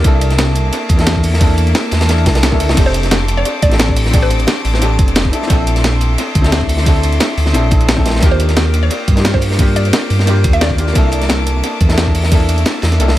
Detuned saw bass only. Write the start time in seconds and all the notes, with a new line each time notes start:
0.04 C2
0.90 E2
1.92 E2
2.26 C2
2.60 D2
2.69 C2
2.77 F1
3.62 A1
4.65 A1
4.99 F1
5.50 A#1
6.35 D2
7.37 D2
7.54 A#1
8.23 D#2
9.08 G2
10.10 G2
10.44 D#2
10.95 C2
11.81 E2
12.83 E2
13.00 C2